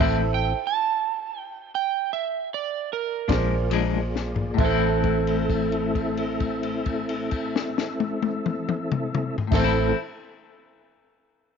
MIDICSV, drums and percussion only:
0, 0, Header, 1, 2, 480
1, 0, Start_track
1, 0, Time_signature, 12, 3, 24, 8
1, 0, Key_signature, 0, "minor"
1, 0, Tempo, 690449
1, 959, Tempo, 733496
1, 1439, Tempo, 794702
1, 2399, Tempo, 878477
1, 2879, Tempo, 914634
1, 6548, End_track
2, 0, Start_track
2, 0, Title_t, "Drums"
2, 2149, Note_on_c, 9, 36, 81
2, 2150, Note_on_c, 9, 51, 82
2, 2159, Note_on_c, 9, 38, 112
2, 2210, Note_off_c, 9, 36, 0
2, 2211, Note_off_c, 9, 51, 0
2, 2220, Note_off_c, 9, 38, 0
2, 2403, Note_on_c, 9, 51, 68
2, 2457, Note_off_c, 9, 51, 0
2, 2647, Note_on_c, 9, 38, 55
2, 2701, Note_off_c, 9, 38, 0
2, 2758, Note_on_c, 9, 43, 81
2, 2812, Note_off_c, 9, 43, 0
2, 2881, Note_on_c, 9, 36, 99
2, 2881, Note_on_c, 9, 49, 89
2, 2933, Note_off_c, 9, 36, 0
2, 2933, Note_off_c, 9, 49, 0
2, 3118, Note_on_c, 9, 49, 44
2, 3120, Note_on_c, 9, 36, 61
2, 3170, Note_off_c, 9, 49, 0
2, 3172, Note_off_c, 9, 36, 0
2, 3241, Note_on_c, 9, 57, 47
2, 3294, Note_off_c, 9, 57, 0
2, 3359, Note_on_c, 9, 36, 68
2, 3362, Note_on_c, 9, 49, 49
2, 3412, Note_off_c, 9, 36, 0
2, 3414, Note_off_c, 9, 49, 0
2, 3477, Note_on_c, 9, 57, 46
2, 3530, Note_off_c, 9, 57, 0
2, 3599, Note_on_c, 9, 36, 59
2, 3600, Note_on_c, 9, 49, 41
2, 3651, Note_off_c, 9, 36, 0
2, 3653, Note_off_c, 9, 49, 0
2, 3715, Note_on_c, 9, 57, 47
2, 3767, Note_off_c, 9, 57, 0
2, 3835, Note_on_c, 9, 49, 46
2, 3837, Note_on_c, 9, 36, 60
2, 3887, Note_off_c, 9, 49, 0
2, 3889, Note_off_c, 9, 36, 0
2, 3955, Note_on_c, 9, 57, 46
2, 4007, Note_off_c, 9, 57, 0
2, 4074, Note_on_c, 9, 49, 50
2, 4077, Note_on_c, 9, 36, 59
2, 4126, Note_off_c, 9, 49, 0
2, 4129, Note_off_c, 9, 36, 0
2, 4195, Note_on_c, 9, 57, 50
2, 4247, Note_off_c, 9, 57, 0
2, 4312, Note_on_c, 9, 49, 53
2, 4317, Note_on_c, 9, 36, 61
2, 4365, Note_off_c, 9, 49, 0
2, 4369, Note_off_c, 9, 36, 0
2, 4442, Note_on_c, 9, 38, 88
2, 4494, Note_off_c, 9, 38, 0
2, 4558, Note_on_c, 9, 38, 93
2, 4611, Note_off_c, 9, 38, 0
2, 4674, Note_on_c, 9, 48, 89
2, 4727, Note_off_c, 9, 48, 0
2, 4791, Note_on_c, 9, 48, 86
2, 4844, Note_off_c, 9, 48, 0
2, 4914, Note_on_c, 9, 47, 98
2, 4966, Note_off_c, 9, 47, 0
2, 5034, Note_on_c, 9, 47, 103
2, 5086, Note_off_c, 9, 47, 0
2, 5154, Note_on_c, 9, 45, 107
2, 5207, Note_off_c, 9, 45, 0
2, 5275, Note_on_c, 9, 45, 104
2, 5327, Note_off_c, 9, 45, 0
2, 5397, Note_on_c, 9, 43, 94
2, 5450, Note_off_c, 9, 43, 0
2, 5470, Note_on_c, 9, 36, 112
2, 5470, Note_on_c, 9, 49, 94
2, 5478, Note_on_c, 9, 38, 96
2, 5522, Note_off_c, 9, 49, 0
2, 5523, Note_off_c, 9, 36, 0
2, 5530, Note_off_c, 9, 38, 0
2, 6548, End_track
0, 0, End_of_file